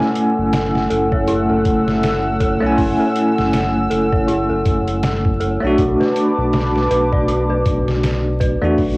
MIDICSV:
0, 0, Header, 1, 6, 480
1, 0, Start_track
1, 0, Key_signature, 3, "minor"
1, 0, Tempo, 750000
1, 1778, Time_signature, 4, 2, 24, 8
1, 5743, End_track
2, 0, Start_track
2, 0, Title_t, "Analog synth pad"
2, 0, Program_c, 0, 89
2, 0, Note_on_c, 0, 57, 87
2, 0, Note_on_c, 0, 78, 80
2, 0, Note_on_c, 0, 88, 93
2, 3673, Note_off_c, 0, 57, 0
2, 3673, Note_off_c, 0, 78, 0
2, 3673, Note_off_c, 0, 88, 0
2, 3697, Note_on_c, 0, 86, 92
2, 3699, Note_on_c, 0, 71, 84
2, 3699, Note_on_c, 0, 81, 78
2, 5599, Note_off_c, 0, 71, 0
2, 5599, Note_off_c, 0, 81, 0
2, 5599, Note_off_c, 0, 86, 0
2, 5743, End_track
3, 0, Start_track
3, 0, Title_t, "Synth bell"
3, 0, Program_c, 1, 98
3, 0, Control_c, 1, 64, 127
3, 0, Note_on_c, 1, 64, 78
3, 0, Note_on_c, 1, 69, 73
3, 464, Note_off_c, 1, 69, 0
3, 577, Note_on_c, 1, 69, 80
3, 704, Note_off_c, 1, 69, 0
3, 719, Note_on_c, 1, 73, 75
3, 813, Note_off_c, 1, 73, 0
3, 817, Note_off_c, 1, 64, 0
3, 817, Note_on_c, 1, 64, 85
3, 951, Note_off_c, 1, 64, 0
3, 957, Note_on_c, 1, 69, 75
3, 1423, Note_off_c, 1, 69, 0
3, 1537, Note_on_c, 1, 69, 67
3, 1664, Note_off_c, 1, 69, 0
3, 1677, Note_on_c, 1, 73, 78
3, 1773, Note_off_c, 1, 73, 0
3, 1776, Note_on_c, 1, 64, 75
3, 1910, Note_off_c, 1, 64, 0
3, 1917, Note_on_c, 1, 69, 80
3, 2384, Note_off_c, 1, 69, 0
3, 2496, Note_on_c, 1, 69, 78
3, 2623, Note_off_c, 1, 69, 0
3, 2638, Note_on_c, 1, 73, 71
3, 2733, Note_off_c, 1, 73, 0
3, 2736, Note_on_c, 1, 64, 89
3, 2870, Note_off_c, 1, 64, 0
3, 2878, Note_on_c, 1, 69, 78
3, 3344, Note_off_c, 1, 69, 0
3, 3458, Note_on_c, 1, 69, 69
3, 3584, Note_off_c, 1, 69, 0
3, 3601, Note_on_c, 1, 73, 79
3, 3694, Note_off_c, 1, 73, 0
3, 3702, Note_on_c, 1, 66, 80
3, 3707, Control_c, 1, 64, 0
3, 3801, Control_c, 1, 64, 127
3, 3833, Note_off_c, 1, 66, 0
3, 3842, Note_on_c, 1, 71, 77
3, 4306, Note_off_c, 1, 71, 0
3, 4420, Note_on_c, 1, 71, 78
3, 4545, Note_off_c, 1, 71, 0
3, 4559, Note_on_c, 1, 74, 76
3, 4653, Note_off_c, 1, 74, 0
3, 4658, Note_on_c, 1, 66, 91
3, 4791, Note_off_c, 1, 66, 0
3, 4798, Note_on_c, 1, 71, 77
3, 5264, Note_off_c, 1, 71, 0
3, 5376, Note_on_c, 1, 71, 69
3, 5503, Note_off_c, 1, 71, 0
3, 5516, Note_on_c, 1, 74, 77
3, 5612, Note_off_c, 1, 74, 0
3, 5626, Control_c, 1, 64, 0
3, 5743, End_track
4, 0, Start_track
4, 0, Title_t, "Tine electric piano"
4, 0, Program_c, 2, 4
4, 0, Note_on_c, 2, 57, 100
4, 0, Note_on_c, 2, 61, 89
4, 0, Note_on_c, 2, 64, 90
4, 0, Note_on_c, 2, 80, 112
4, 1639, Note_off_c, 2, 57, 0
4, 1645, Note_off_c, 2, 61, 0
4, 1651, Note_off_c, 2, 64, 0
4, 1658, Note_off_c, 2, 80, 0
4, 1666, Note_on_c, 2, 57, 105
4, 1679, Note_on_c, 2, 61, 92
4, 1693, Note_on_c, 2, 64, 90
4, 1705, Note_on_c, 2, 80, 106
4, 3559, Note_off_c, 2, 57, 0
4, 3565, Note_off_c, 2, 61, 0
4, 3572, Note_off_c, 2, 64, 0
4, 3578, Note_off_c, 2, 80, 0
4, 3587, Note_on_c, 2, 57, 100
4, 3613, Note_on_c, 2, 62, 95
4, 3627, Note_on_c, 2, 66, 111
4, 5479, Note_off_c, 2, 57, 0
4, 5492, Note_off_c, 2, 62, 0
4, 5499, Note_off_c, 2, 66, 0
4, 5514, Note_on_c, 2, 57, 102
4, 5528, Note_on_c, 2, 62, 95
4, 5534, Note_on_c, 2, 66, 105
4, 5743, Note_off_c, 2, 57, 0
4, 5743, Note_off_c, 2, 62, 0
4, 5743, Note_off_c, 2, 66, 0
4, 5743, End_track
5, 0, Start_track
5, 0, Title_t, "Analog synth bass"
5, 0, Program_c, 3, 38
5, 243, Note_on_c, 3, 30, 86
5, 561, Note_off_c, 3, 30, 0
5, 585, Note_on_c, 3, 30, 88
5, 959, Note_off_c, 3, 30, 0
5, 962, Note_on_c, 3, 30, 96
5, 1048, Note_off_c, 3, 30, 0
5, 1061, Note_on_c, 3, 30, 92
5, 1653, Note_off_c, 3, 30, 0
5, 1683, Note_on_c, 3, 35, 97
5, 1769, Note_off_c, 3, 35, 0
5, 1783, Note_on_c, 3, 30, 101
5, 1904, Note_off_c, 3, 30, 0
5, 2165, Note_on_c, 3, 30, 89
5, 2482, Note_off_c, 3, 30, 0
5, 2505, Note_on_c, 3, 30, 95
5, 2881, Note_off_c, 3, 30, 0
5, 2885, Note_on_c, 3, 30, 92
5, 2970, Note_off_c, 3, 30, 0
5, 2982, Note_on_c, 3, 30, 99
5, 3573, Note_off_c, 3, 30, 0
5, 3605, Note_on_c, 3, 35, 93
5, 3690, Note_off_c, 3, 35, 0
5, 3703, Note_on_c, 3, 35, 95
5, 3824, Note_off_c, 3, 35, 0
5, 4084, Note_on_c, 3, 35, 89
5, 4402, Note_off_c, 3, 35, 0
5, 4421, Note_on_c, 3, 35, 91
5, 4799, Note_off_c, 3, 35, 0
5, 4802, Note_on_c, 3, 35, 98
5, 4888, Note_off_c, 3, 35, 0
5, 4902, Note_on_c, 3, 35, 90
5, 5493, Note_off_c, 3, 35, 0
5, 5520, Note_on_c, 3, 40, 101
5, 5607, Note_off_c, 3, 40, 0
5, 5620, Note_on_c, 3, 35, 98
5, 5742, Note_off_c, 3, 35, 0
5, 5743, End_track
6, 0, Start_track
6, 0, Title_t, "Drums"
6, 1, Note_on_c, 9, 38, 37
6, 65, Note_off_c, 9, 38, 0
6, 98, Note_on_c, 9, 42, 73
6, 162, Note_off_c, 9, 42, 0
6, 338, Note_on_c, 9, 42, 81
6, 341, Note_on_c, 9, 38, 110
6, 402, Note_off_c, 9, 42, 0
6, 405, Note_off_c, 9, 38, 0
6, 483, Note_on_c, 9, 38, 41
6, 547, Note_off_c, 9, 38, 0
6, 580, Note_on_c, 9, 42, 69
6, 644, Note_off_c, 9, 42, 0
6, 718, Note_on_c, 9, 36, 95
6, 782, Note_off_c, 9, 36, 0
6, 817, Note_on_c, 9, 42, 81
6, 881, Note_off_c, 9, 42, 0
6, 1059, Note_on_c, 9, 36, 94
6, 1059, Note_on_c, 9, 42, 69
6, 1123, Note_off_c, 9, 36, 0
6, 1123, Note_off_c, 9, 42, 0
6, 1203, Note_on_c, 9, 38, 44
6, 1267, Note_off_c, 9, 38, 0
6, 1301, Note_on_c, 9, 42, 90
6, 1304, Note_on_c, 9, 38, 116
6, 1365, Note_off_c, 9, 42, 0
6, 1368, Note_off_c, 9, 38, 0
6, 1539, Note_on_c, 9, 36, 89
6, 1539, Note_on_c, 9, 42, 64
6, 1603, Note_off_c, 9, 36, 0
6, 1603, Note_off_c, 9, 42, 0
6, 1780, Note_on_c, 9, 36, 108
6, 1780, Note_on_c, 9, 46, 73
6, 1844, Note_off_c, 9, 36, 0
6, 1844, Note_off_c, 9, 46, 0
6, 2020, Note_on_c, 9, 42, 69
6, 2084, Note_off_c, 9, 42, 0
6, 2165, Note_on_c, 9, 38, 49
6, 2229, Note_off_c, 9, 38, 0
6, 2260, Note_on_c, 9, 42, 79
6, 2263, Note_on_c, 9, 38, 111
6, 2324, Note_off_c, 9, 42, 0
6, 2327, Note_off_c, 9, 38, 0
6, 2501, Note_on_c, 9, 42, 67
6, 2565, Note_off_c, 9, 42, 0
6, 2640, Note_on_c, 9, 36, 91
6, 2704, Note_off_c, 9, 36, 0
6, 2740, Note_on_c, 9, 42, 89
6, 2804, Note_off_c, 9, 42, 0
6, 2980, Note_on_c, 9, 36, 97
6, 2980, Note_on_c, 9, 42, 69
6, 3044, Note_off_c, 9, 36, 0
6, 3044, Note_off_c, 9, 42, 0
6, 3121, Note_on_c, 9, 42, 47
6, 3185, Note_off_c, 9, 42, 0
6, 3219, Note_on_c, 9, 42, 94
6, 3222, Note_on_c, 9, 38, 122
6, 3283, Note_off_c, 9, 42, 0
6, 3286, Note_off_c, 9, 38, 0
6, 3360, Note_on_c, 9, 36, 94
6, 3424, Note_off_c, 9, 36, 0
6, 3460, Note_on_c, 9, 42, 60
6, 3524, Note_off_c, 9, 42, 0
6, 3701, Note_on_c, 9, 36, 104
6, 3701, Note_on_c, 9, 42, 87
6, 3765, Note_off_c, 9, 36, 0
6, 3765, Note_off_c, 9, 42, 0
6, 3846, Note_on_c, 9, 38, 37
6, 3910, Note_off_c, 9, 38, 0
6, 3942, Note_on_c, 9, 42, 70
6, 4006, Note_off_c, 9, 42, 0
6, 4180, Note_on_c, 9, 42, 84
6, 4183, Note_on_c, 9, 38, 113
6, 4244, Note_off_c, 9, 42, 0
6, 4247, Note_off_c, 9, 38, 0
6, 4324, Note_on_c, 9, 38, 40
6, 4388, Note_off_c, 9, 38, 0
6, 4421, Note_on_c, 9, 42, 71
6, 4485, Note_off_c, 9, 42, 0
6, 4560, Note_on_c, 9, 36, 97
6, 4624, Note_off_c, 9, 36, 0
6, 4660, Note_on_c, 9, 42, 86
6, 4724, Note_off_c, 9, 42, 0
6, 4899, Note_on_c, 9, 36, 99
6, 4900, Note_on_c, 9, 42, 69
6, 4963, Note_off_c, 9, 36, 0
6, 4964, Note_off_c, 9, 42, 0
6, 5043, Note_on_c, 9, 38, 46
6, 5107, Note_off_c, 9, 38, 0
6, 5141, Note_on_c, 9, 42, 89
6, 5144, Note_on_c, 9, 38, 123
6, 5205, Note_off_c, 9, 42, 0
6, 5208, Note_off_c, 9, 38, 0
6, 5379, Note_on_c, 9, 36, 89
6, 5381, Note_on_c, 9, 42, 66
6, 5443, Note_off_c, 9, 36, 0
6, 5445, Note_off_c, 9, 42, 0
6, 5618, Note_on_c, 9, 36, 105
6, 5619, Note_on_c, 9, 46, 76
6, 5682, Note_off_c, 9, 36, 0
6, 5683, Note_off_c, 9, 46, 0
6, 5743, End_track
0, 0, End_of_file